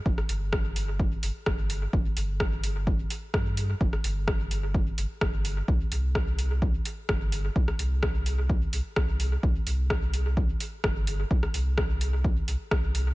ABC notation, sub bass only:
X:1
M:4/4
L:1/8
Q:1/4=128
K:Cdor
V:1 name="Sub bass" clef=bass
G,,, G,,,4 G,,, G,,,2 | G,,, G,,,4 z G,,2 | G,,, G,,,4 G,,, G,,,2 | C,, C,,4 z G,,,2 |
C,, C,,4 C,, C,,2 | C,, C,,4 z G,,,2 | C,, C,,4 C,, C,,2 |]